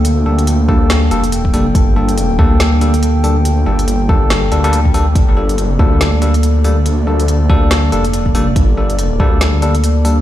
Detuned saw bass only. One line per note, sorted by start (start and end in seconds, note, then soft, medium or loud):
0.00 0.25 D2 medium
0.26 1.10 D2 loud
1.11 1.52 F1 medium
1.54 1.74 F1 loud
1.75 2.38 G1 loud
2.39 3.65 D2 medium
3.67 4.50 G1 loud
4.52 5.14 D2 loud
5.15 5.59 G1 loud
5.59 5.78 F#1 loud
5.79 7.06 D2 loud
7.07 7.91 D2 loud
7.92 8.33 F1 loud
8.35 8.55 F1 loud
8.56 9.18 G1 loud
9.20 10.21 D2 loud